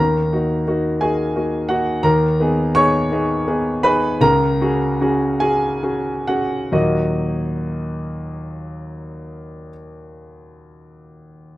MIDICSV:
0, 0, Header, 1, 2, 480
1, 0, Start_track
1, 0, Key_signature, -6, "minor"
1, 0, Tempo, 687285
1, 1433, Time_signature, 6, 3, 24, 8
1, 1434, Tempo, 710900
1, 2394, Tempo, 762389
1, 3354, Tempo, 832178
1, 3834, Tempo, 890208
1, 5274, Tempo, 869565
1, 6969, End_track
2, 0, Start_track
2, 0, Title_t, "Grand piano"
2, 0, Program_c, 0, 0
2, 0, Control_c, 0, 64, 127
2, 0, Note_on_c, 0, 39, 52
2, 0, Note_on_c, 0, 51, 50
2, 0, Note_on_c, 0, 70, 60
2, 0, Note_on_c, 0, 82, 90
2, 6, Control_c, 0, 64, 0
2, 102, Control_c, 0, 64, 127
2, 215, Note_off_c, 0, 39, 0
2, 221, Note_off_c, 0, 51, 0
2, 228, Note_on_c, 0, 58, 40
2, 229, Note_on_c, 0, 63, 46
2, 232, Note_on_c, 0, 66, 46
2, 444, Note_off_c, 0, 58, 0
2, 444, Note_off_c, 0, 63, 0
2, 446, Note_off_c, 0, 66, 0
2, 471, Note_on_c, 0, 58, 48
2, 473, Note_on_c, 0, 63, 45
2, 475, Note_on_c, 0, 66, 51
2, 677, Note_off_c, 0, 70, 0
2, 685, Note_off_c, 0, 58, 0
2, 686, Note_off_c, 0, 63, 0
2, 687, Note_off_c, 0, 66, 0
2, 701, Note_off_c, 0, 82, 0
2, 704, Note_on_c, 0, 80, 78
2, 707, Note_on_c, 0, 68, 64
2, 708, Note_on_c, 0, 58, 44
2, 712, Note_on_c, 0, 63, 43
2, 717, Note_on_c, 0, 66, 47
2, 924, Note_off_c, 0, 58, 0
2, 926, Note_off_c, 0, 63, 0
2, 929, Note_off_c, 0, 66, 0
2, 948, Note_on_c, 0, 58, 42
2, 951, Note_on_c, 0, 63, 41
2, 953, Note_on_c, 0, 66, 43
2, 1161, Note_off_c, 0, 68, 0
2, 1165, Note_off_c, 0, 58, 0
2, 1167, Note_off_c, 0, 63, 0
2, 1168, Note_off_c, 0, 66, 0
2, 1177, Note_on_c, 0, 78, 82
2, 1185, Note_on_c, 0, 58, 46
2, 1186, Note_on_c, 0, 66, 63
2, 1187, Note_off_c, 0, 80, 0
2, 1191, Note_on_c, 0, 63, 46
2, 1406, Note_off_c, 0, 58, 0
2, 1410, Note_off_c, 0, 63, 0
2, 1414, Note_off_c, 0, 66, 0
2, 1418, Note_on_c, 0, 82, 96
2, 1422, Note_on_c, 0, 39, 62
2, 1425, Note_on_c, 0, 51, 62
2, 1427, Note_off_c, 0, 78, 0
2, 1427, Note_on_c, 0, 70, 79
2, 1445, Control_c, 0, 64, 0
2, 1558, Control_c, 0, 64, 127
2, 1659, Note_off_c, 0, 39, 0
2, 1660, Note_off_c, 0, 51, 0
2, 1669, Note_on_c, 0, 59, 54
2, 1674, Note_on_c, 0, 63, 47
2, 1677, Note_on_c, 0, 68, 59
2, 1880, Note_off_c, 0, 70, 0
2, 1885, Note_off_c, 0, 59, 0
2, 1887, Note_off_c, 0, 63, 0
2, 1889, Note_off_c, 0, 68, 0
2, 1903, Note_off_c, 0, 82, 0
2, 1903, Note_on_c, 0, 85, 115
2, 1909, Note_on_c, 0, 59, 52
2, 1909, Note_on_c, 0, 63, 55
2, 1911, Note_on_c, 0, 73, 86
2, 1916, Note_on_c, 0, 68, 59
2, 2124, Note_off_c, 0, 63, 0
2, 2125, Note_off_c, 0, 59, 0
2, 2128, Note_off_c, 0, 68, 0
2, 2153, Note_on_c, 0, 59, 53
2, 2155, Note_on_c, 0, 63, 54
2, 2161, Note_on_c, 0, 68, 53
2, 2370, Note_off_c, 0, 59, 0
2, 2372, Note_off_c, 0, 63, 0
2, 2375, Note_off_c, 0, 68, 0
2, 2395, Note_on_c, 0, 59, 55
2, 2396, Note_on_c, 0, 68, 58
2, 2397, Note_on_c, 0, 63, 48
2, 2599, Note_off_c, 0, 73, 0
2, 2602, Note_off_c, 0, 59, 0
2, 2602, Note_off_c, 0, 68, 0
2, 2603, Note_off_c, 0, 63, 0
2, 2620, Note_off_c, 0, 85, 0
2, 2620, Note_on_c, 0, 83, 99
2, 2623, Note_on_c, 0, 59, 54
2, 2624, Note_on_c, 0, 71, 74
2, 2627, Note_on_c, 0, 63, 59
2, 2631, Note_on_c, 0, 68, 60
2, 2835, Note_off_c, 0, 59, 0
2, 2837, Note_off_c, 0, 63, 0
2, 2840, Note_off_c, 0, 68, 0
2, 2843, Note_off_c, 0, 71, 0
2, 2856, Note_on_c, 0, 37, 67
2, 2857, Note_off_c, 0, 83, 0
2, 2859, Note_on_c, 0, 49, 73
2, 2859, Note_on_c, 0, 82, 121
2, 2860, Note_on_c, 0, 70, 84
2, 2873, Control_c, 0, 64, 0
2, 2979, Control_c, 0, 64, 127
2, 3093, Note_off_c, 0, 37, 0
2, 3095, Note_off_c, 0, 49, 0
2, 3110, Note_on_c, 0, 61, 57
2, 3114, Note_on_c, 0, 66, 59
2, 3115, Note_on_c, 0, 68, 60
2, 3332, Note_off_c, 0, 61, 0
2, 3334, Note_off_c, 0, 66, 0
2, 3335, Note_off_c, 0, 68, 0
2, 3361, Note_on_c, 0, 61, 55
2, 3364, Note_on_c, 0, 66, 56
2, 3367, Note_on_c, 0, 68, 59
2, 3565, Note_off_c, 0, 70, 0
2, 3569, Note_off_c, 0, 61, 0
2, 3570, Note_off_c, 0, 66, 0
2, 3572, Note_off_c, 0, 68, 0
2, 3586, Note_on_c, 0, 80, 96
2, 3587, Note_off_c, 0, 82, 0
2, 3592, Note_on_c, 0, 61, 52
2, 3593, Note_on_c, 0, 68, 72
2, 3597, Note_on_c, 0, 66, 50
2, 3812, Note_off_c, 0, 61, 0
2, 3814, Note_off_c, 0, 66, 0
2, 3827, Note_off_c, 0, 68, 0
2, 3832, Note_on_c, 0, 61, 47
2, 3835, Note_on_c, 0, 68, 51
2, 3836, Note_on_c, 0, 66, 48
2, 4051, Note_off_c, 0, 61, 0
2, 4053, Note_off_c, 0, 66, 0
2, 4053, Note_off_c, 0, 68, 0
2, 4072, Note_off_c, 0, 80, 0
2, 4073, Note_on_c, 0, 78, 83
2, 4078, Note_on_c, 0, 61, 46
2, 4078, Note_on_c, 0, 66, 60
2, 4082, Note_on_c, 0, 68, 49
2, 4297, Note_off_c, 0, 61, 0
2, 4299, Note_off_c, 0, 68, 0
2, 4301, Note_off_c, 0, 66, 0
2, 4312, Note_on_c, 0, 46, 49
2, 4313, Note_on_c, 0, 39, 55
2, 4315, Note_on_c, 0, 54, 47
2, 4316, Note_off_c, 0, 78, 0
2, 4316, Note_on_c, 0, 75, 66
2, 4317, Note_on_c, 0, 63, 47
2, 4319, Note_on_c, 0, 58, 50
2, 4319, Note_on_c, 0, 66, 44
2, 4329, Control_c, 0, 64, 0
2, 4433, Control_c, 0, 64, 127
2, 5929, Note_off_c, 0, 46, 0
2, 5931, Note_off_c, 0, 39, 0
2, 5933, Note_off_c, 0, 54, 0
2, 5934, Note_off_c, 0, 75, 0
2, 5935, Note_off_c, 0, 63, 0
2, 5937, Note_off_c, 0, 58, 0
2, 5937, Note_off_c, 0, 66, 0
2, 6969, End_track
0, 0, End_of_file